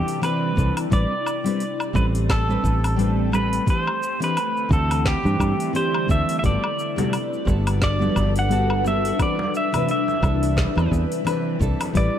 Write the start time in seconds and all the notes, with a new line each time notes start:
Already playing: C3 E3 G3 C4 D4 E4 G4 B4 D5
0.08 open hi-hat, shaker
0.22 E3 C4 D4 B4, open hi-hat, low woodblock, shaker
0.56 C2 E3 C4 D4 A4, kick, shaker
0.77 open hi-hat, low woodblock, shaker
0.90 A1 G3 A3 C4 D4 G4 B4 D5, kick, open hi-hat, shaker
1.26 low woodblock, shaker
1.44 G3 C4 D4 B4, open hi-hat, shaker
1.60 open hi-hat, shaker
1.80 low woodblock, shaker
1.93 A1 G3 C4 D4 A4 B4, kick, shaker
2.15 open hi-hat, shaker
2.29 A4, kick, snare, open hi-hat, low woodblock, shaker
2.48 G3 C4 D4 B4, shaker
2.64 A1, kick, shaker
2.84 open hi-hat, low woodblock, shaker
2.96 G3 C4 D4 B4, open hi-hat, shaker
3.32 G3 C4 D4 A4 B4, low woodblock, shaker
3.53 open hi-hat, shaker
3.66 D3 E3 G3 C4 D4 E4 G4 C5, kick, open hi-hat, shaker
3.87 low woodblock
4.03 shaker
4.20 E3 C4 D4 G4 B4, open hi-hat, shaker
4.37 open hi-hat, low woodblock, shaker
4.57 shaker
4.69 D2 E3 C4 D4 F#4, kick, shaker
4.73 A4
4.91 open hi-hat, low woodblock, shaker
5.05 G4, kick, snare, open hi-hat, shaker
5.23 G2 E3 C4 D4 G4, shaker
5.40 G2, kick, low woodblock, shaker
5.60 open hi-hat, shaker
5.73 E3 C4 D4 G4 C5, open hi-hat, shaker
5.94 low woodblock
6.08 D2 E3 C4 D4 A4 E5, kick, shaker
6.29 open hi-hat, shaker
6.39 G3 E5
6.43 G1 G3 B3 D4 F#4 A4 B4 D5, kick, open hi-hat, muted conga, shaker
6.64 low woodblock
6.79 shaker
6.96 G3 B3 F#4 A4, open hi-hat, muted conga, low conga, shaker
7.13 open hi-hat, low woodblock, shaker
7.33 shaker
7.45 G1 G3 B3 A4, kick, shaker
7.67 open hi-hat, muted conga, low woodblock, shaker
7.82 D5, kick, snare, open hi-hat, shaker
7.99 G3 B3 F#4 A4, high conga, shaker
8.16 G1, kick, muted conga, low woodblock, shaker
8.36 F#5, open hi-hat, shaker
8.49 G3 B3 F#4 A4, open hi-hat, shaker
8.70 low woodblock
8.84 G3 B3 F#4 A4 E5, muted conga, shaker
9.05 open hi-hat, shaker
9.19 C3 E3 G3 C4 D4 E4 B4 D5, kick, open hi-hat, low woodblock, shaker
9.39 muted conga
9.55 E5, shaker
9.73 E3 C4 D4 B4, open hi-hat, low conga, low woodblock, shaker
9.89 E5, open hi-hat, shaker
10.08 muted conga, shaker
10.22 C2 E3 C4 D4 A4, kick, low woodblock, shaker
10.43 open hi-hat, shaker
10.57 kick, snare, open hi-hat, muted conga, shaker
10.75 E2 E3 C4 D4 B4, low woodblock, shaker
10.91 E2, kick, shaker
11.12 open hi-hat, shaker
11.25 E3 C4 D4 B4, open hi-hat, muted conga, low woodblock, shaker
11.59 C2 E3 C4 D4 A4, kick, shaker
11.80 open hi-hat, muted conga, low woodblock, shaker
11.94 A1 G3 C4 D4 B4 D5, kick, open hi-hat, shaker